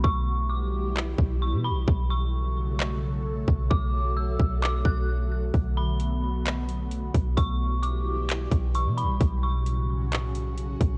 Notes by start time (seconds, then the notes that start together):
0.04 B1 B2 E3 G3 E4 G4 C#6, kick
0.50 D6
0.97 clap
1.19 B1, kick
1.42 C#6
1.53 B2
1.64 B5
1.70 B1
1.88 B1 C#3 F#3 A3 F#4 A4, kick
2.10 C#6
2.80 clap
3.48 B1, kick
3.71 B1 D3 D6, kick
4.17 E6
4.39 B1, kick
4.62 D6, clap
4.85 B1 F#6, kick
5.54 B1 D3 B3, kick, closed hi-hat
5.77 B5
6.00 closed hi-hat
6.46 clap, closed hi-hat
6.69 closed hi-hat
6.91 closed hi-hat
7.14 B1, kick, closed hi-hat
7.37 B1 B2 E3 G3 E4 G4 C#6, kick, closed hi-hat
7.82 D6, closed hi-hat
8.29 clap, closed hi-hat
8.51 B1, kick, closed hi-hat
8.74 C#6, closed hi-hat
8.86 B2
8.97 B5, closed hi-hat
9.03 B1
9.20 B1 A2 C#3 F#3 C#4 F#4, kick, closed hi-hat
9.43 C#6
9.66 closed hi-hat
10.12 clap, closed hi-hat
10.35 closed hi-hat
10.58 closed hi-hat
10.81 B1, kick, closed hi-hat